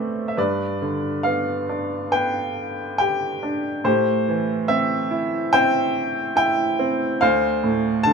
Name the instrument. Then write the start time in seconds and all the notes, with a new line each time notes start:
upright piano
Already playing: A2 A3 B3 C4 B4 C5 D5 E5
0.28 E5
0.37 G2 B4 D5
0.82 D3
1.23 B3 F5
1.69 D4
2.12 B3 B4 G5
2.98 G4 G5
3.43 D4
3.84 A2 G4 C5
4.28 E3
4.68 C4 E5
5.11 E4
5.53 C4 C5 G5
6.36 E4 G5
6.79 C4
7.21 D2 C5 F5
7.64 A2
8.03 D3 A5